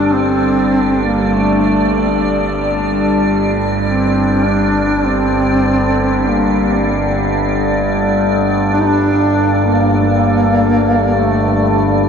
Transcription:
Already playing: G1 G2 G3 D4 A4 D5
0.14 C4
1.05 A#3
1.35 A3
3.83 C4
4.44 D4
5.05 C4
6.29 A#3
8.73 D4
8.80 D#4
8.87 D4
9.66 A#3
9.98 A#3
11.19 A3

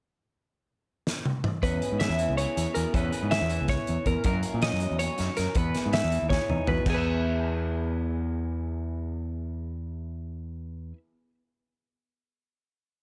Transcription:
1.07 snare
1.26 high tom
1.44 mid tom
1.63 E2 C#4 B4, kick, closed hi-hat
1.82 G#4, closed hi-hat
1.92 G#2
2.00 G#4 E5, snare, closed hi-hat
2.09 E2
2.19 E3, closed hi-hat
2.29 C#2
2.37 G#4 C#5, closed hi-hat
2.57 E2 G#4, closed hi-hat
2.75 E2 B2 G#4 A#4, closed hi-hat
2.93 E2 C#4 B4, kick, closed hi-hat
3.12 G#4, closed hi-hat
3.23 G#2
3.31 G#4 E5, snare, closed hi-hat
3.41 E2
3.50 E3, closed hi-hat
3.61 C#2
3.68 C#5, kick, snare, closed hi-hat
3.87 E2, closed hi-hat
4.05 E2 A#4, kick, closed hi-hat
4.24 F#2 A#3 A#4, kick, closed hi-hat
4.43 F#4, closed hi-hat
4.54 A#2
4.62 C#4 D#5, snare, closed hi-hat
4.73 F#2
4.80 F#3, closed hi-hat
4.91 E2
4.99 A#2 C#5, closed hi-hat
5.17 F#2 G#2, snare, closed hi-hat
5.36 F#2 A#4, snare, closed hi-hat
5.55 E2 B3 B4, kick, closed hi-hat
5.75 G#4, snare, closed hi-hat
5.86 G#2
5.93 E5, snare, closed hi-hat
6.04 E2
6.10 E3, closed hi-hat
6.22 D#2
6.29 G#4 C#5, kick, snare
6.49 E2 D#4, mid tom
6.67 E2 B2 F#4 B4, floor tom
6.84 E2 E3 B3, kick, crash
6.90 G#4
6.94 B4 E5

